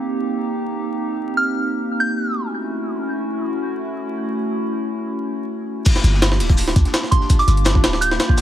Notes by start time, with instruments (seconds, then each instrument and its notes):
Already playing: ambient pad A#3 C4 D#4 G4
1.37 synth bell F6
2.00 synth bell G6
2.27 ambient pad A3 C#4 E4 F#4
5.85 ambient pad A#3 D4 F4 G4, kick, closed hi-hat, crash, shaker
5.96 snare
6.04 808-style bass G1, closed hi-hat, shaker
6.14 snare
6.22 snare, closed hi-hat, shaker
6.32 snare
6.40 808-style bass D1, closed hi-hat, open hi-hat
6.49 kick, closed hi-hat
6.57 open hi-hat, shaker
6.67 snare
6.76 808-style bass D2, kick, closed hi-hat, shaker
6.85 snare, closed hi-hat
6.93 snare, closed hi-hat, shaker
7.03 snare
7.11 synth bell C6, kick, closed hi-hat, shaker
7.21 snare
7.30 kick, closed hi-hat, shaker
7.39 synth bell D6, closed hi-hat
7.48 808-style bass G1, closed hi-hat, shaker
7.57 closed hi-hat
7.65 snare, closed hi-hat, shaker
7.75 kick
7.84 808-style bass D1, snare, closed hi-hat, shaker
7.93 snare
8.01 synth bell G6, closed hi-hat, shaker
8.11 snare
8.19 snare, closed hi-hat, shaker
8.29 kick
8.37 snare, open hi-hat, shaker